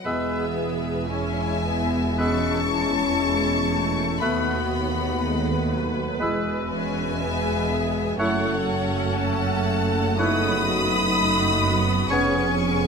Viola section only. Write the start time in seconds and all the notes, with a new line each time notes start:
0.05 B3 G#4
1.09 C#4 E4
1.64 B3
2.20 G#3 E4
3.22 G#3
3.73 A3
4.23 B3 F#4
5.24 G#3 B4
5.72 F#3
6.21 G#3
6.72 C#4
7.22 B3 B4
7.72 G#4
8.21 A3 A4
8.68 C#4
10.20 B3 F#4
11.16 A3 F#4
11.65 B3
12.13 C#4 G#4